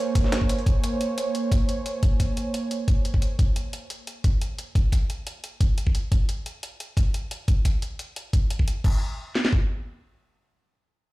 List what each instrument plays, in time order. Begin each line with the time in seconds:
Already playing: analog synth pad A#3 C5 C#5 G#5
0.15 kick, closed hi-hat
0.24 snare
0.32 snare, closed hi-hat
0.41 kick
0.49 closed hi-hat
0.59 closed hi-hat
0.66 kick, closed hi-hat
0.84 closed hi-hat
1.01 closed hi-hat
1.18 closed hi-hat
1.35 closed hi-hat
1.52 kick, closed hi-hat
1.69 closed hi-hat
1.86 closed hi-hat
2.03 kick, closed hi-hat
2.20 kick, closed hi-hat
2.37 closed hi-hat
2.54 closed hi-hat
2.71 closed hi-hat
2.88 kick, closed hi-hat
3.05 closed hi-hat
3.14 kick
3.22 closed hi-hat
3.39 kick, closed hi-hat
3.56 closed hi-hat
3.73 closed hi-hat
3.90 closed hi-hat
4.07 closed hi-hat
4.24 kick, closed hi-hat
4.41 closed hi-hat
4.59 closed hi-hat
4.75 kick, closed hi-hat
4.92 kick, closed hi-hat
5.10 closed hi-hat
5.27 closed hi-hat
5.44 closed hi-hat
5.61 kick, closed hi-hat
5.78 closed hi-hat
5.87 kick
5.95 closed hi-hat
6.12 kick, closed hi-hat
6.29 closed hi-hat
6.46 closed hi-hat
6.63 closed hi-hat
6.80 closed hi-hat
6.97 kick, closed hi-hat
7.14 closed hi-hat
7.31 closed hi-hat
7.48 kick, closed hi-hat
7.65 kick, closed hi-hat
7.82 closed hi-hat
7.99 closed hi-hat
8.16 closed hi-hat
8.33 kick, closed hi-hat
8.50 closed hi-hat
8.59 kick
8.68 closed hi-hat
8.84 kick, crash
9.35 snare
9.45 snare
9.53 kick